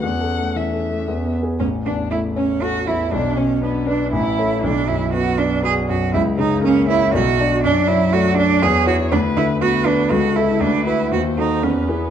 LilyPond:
<<
  \new Staff \with { instrumentName = "Violin" } { \time 3/4 \key a \major \tempo 4 = 119 fis''4 e''4. r8 | cis'8 d'8 e'8 cis'8 fis'8 e'8 | d'8 cis'8 b8 d'8 e'4 | r4 b'4 b'4 |
r4 ais'4 d''4 | d''4 d''4 cis''4 | b'4 b'4 a'4 | b'4 bis'4 b'4 | }
  \new Staff \with { instrumentName = "Cello" } { \time 3/4 \key a \major cis'2~ cis'8 r8 | cis'8 d'8 e'8 cis'8 fis'8 e'8 | d'8 cis'8 b8 d'8 e'4 | d'8 e'8 fis'8 d'8 gis'8 fis'8 |
e'8 dis'8 cis'8 e'8 fis'4 | d'8 e'8 fis'8 d'8 gis'8 fis'8 | d'8 e'8 fis'8 d'8 fis'8 e'8 | d'8 e'8 fis'8 dis'8 cis'8 b8 | }
  \new Staff \with { instrumentName = "Grand piano" } { \time 3/4 \key a \major \tuplet 3/2 { e,8 a'8 a8 e8 a'8 a8 e,8 b8 <gis' b'>8 } | a,,8 e,8 a8 cis''8 a'8 e,8 | b,,8 b,8 d'8 b'8 a,,8 <a' cis''>8 | b,,8 fis,8 b8 d''8 fis'8 fis,8 |
cis,8 cis8 ais8 cis''8 b,,8 <d' d''>8 | fis,8 fis8 a8 d''8 e,8 <e' cis''>8 | d,8 d8 b8 b'8 cis,8 <e' a'>8 | d,8 <fis' b'>8 dis,8 <fis' a'>8 e,8 <e' gis'>8 | }
>>